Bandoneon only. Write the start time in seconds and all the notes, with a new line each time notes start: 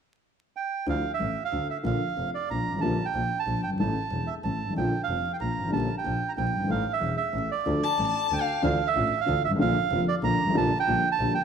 0.56 G5
0.90 F5
1.14 E5
1.45 F5
1.70 E5
1.85 F5
2.35 D5
2.50 A#5
2.81 A5
3.05 G5
3.39 A5
3.63 G5
3.80 A5
4.27 E5
4.44 A5
4.77 G5
5.03 F5
5.33 G5
5.41 A#5
5.73 A5
5.98 G5
6.29 A#5
6.37 G5
6.71 F5
6.93 E5
7.17 E5
7.51 D5
8.33 G5
8.64 F5
8.87 E5
9.21 F5
9.45 E5
9.61 F5
10.08 D5
10.24 A#5
10.57 A5
10.80 G5
11.12 A5
11.34 G5